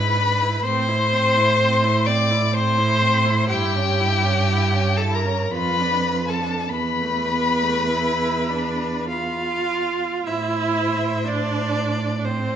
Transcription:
Already playing: G#2 E4 B4 B5
0.17 D4
0.41 E4
0.63 A2 C4 C5 C6
0.88 E4
1.13 C4
1.36 E4
1.61 C4
1.83 E4
2.06 C4 D5 D6
2.30 E4
2.53 C4 C5 C6
2.78 E4
3.01 C4
3.25 E4
3.48 G2 E4 G4 G5
3.75 C#4
4.00 E4
4.24 C#4
4.48 E4
4.73 C#4
4.96 E4 A4 A5
5.14 A#4 A#5
5.25 C#4
5.51 F2 F4 B4 B5
5.81 D4
6.11 F4
6.28 A4 A5
6.40 D4
6.69 E2 B3 B4 B5
7.01 A3
7.31 B3
7.62 A3
7.91 E4
8.50 D4
9.08 F4 F5
10.25 A2 E4 C5 E5
11.26 D4 D5
12.18 D4
12.25 C4 C5

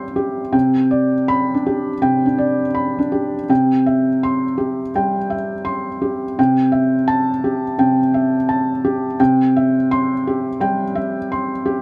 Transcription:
Already playing: G3 G4 E5 G5 C6
0.16 G4
0.52 C3 G5
0.91 D5
1.28 B5
1.54 D4
1.67 G4
2.02 C3 G5
2.26 D4
2.38 D5
2.75 B5
2.99 D4
3.12 G4
3.49 C3 G5
3.86 E5
4.23 C6
4.58 G4
4.95 G3 G5
5.30 E5
5.65 C6
6.02 G4
6.39 C3 G5
6.72 E5
7.08 A5
7.44 G4
7.78 C3 G5
8.14 E5
8.49 A5
8.85 G4
9.20 C3 G5
9.57 E5
9.91 C6
10.27 G4
10.60 G3 G5
10.95 E5
11.32 C6
11.66 G4

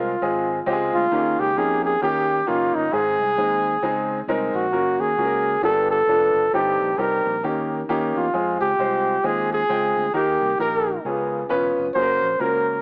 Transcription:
Already playing: C2 G#3 C4 F4 A#4
0.22 G#1 G#3 C4 F4 G#4
0.66 C#2 G#3 C4 F4 G4
0.73 G#4
0.94 D2 F4
1.12 D#2 D#3 A#3 C#4 D#4 G4
1.18 G#4
1.39 C#2 G4
1.56 F2 A#3 C#4 D#4 G4 G#4
1.85 G#4
2.01 D#2 D#3 A#3 C#4 D#4 G4
2.47 F#1 A#3 C#4 D#4 F4
2.75 G1 D#4
2.92 G#1 G#2 G#3 C4 D#4 G#4
3.20 C2
3.37 D#2 G#3 C4 D#4 G#4
3.82 C#2 G#3 C4 D#4 G#4
4.28 C2 G#3 C4 D#4 A#4
4.54 A#1 F#4
4.72 F#1 A#3 C#4 F#4 A#4
5.00 D#2 G#4
5.17 C#2 A#3 C#4 F#4 G#4
5.25 A#4
5.62 G1 G2 A#3 D4 F4 G4 A4
5.68 B3
5.91 A4
6.07 F1 B3 D4 F4 A4
6.34 F#1
6.53 G1 G2 G3 C4 D#4 G4
6.81 A#1
6.98 C2 G3 C4 D#4 G4 A#4
7.25 A#1
7.43 D#2 D#3 A#3 C#4 D#4 G4
7.89 D#2 A#3 C#4 D#4 G4
8.16 E2 F4
8.34 F2 G#3 C4 F4 G#4
8.61 C#2 G4
8.79 C2 G#3 C4 F4 C5
9.23 D#2 G#3 C4 F4 G#4
9.53 G#4
9.69 C#2 G#3 C4 F4 G5
9.97 D2
10.14 D#2 D#3 A#3 D#4 G4 A#4
10.41 C2
10.59 A#1 A#3 D#4 G4 A#4
11.05 C#2 C#3 B3 C#4 F4 G#4
11.49 E1 B3 C#4 F4 B4
11.77 F1
11.94 F#1 A#3 C#4 F#4 G#4 C5
12.02 A#4
12.22 A#1
12.39 C#2 A#3 C#4 F#4 A#4

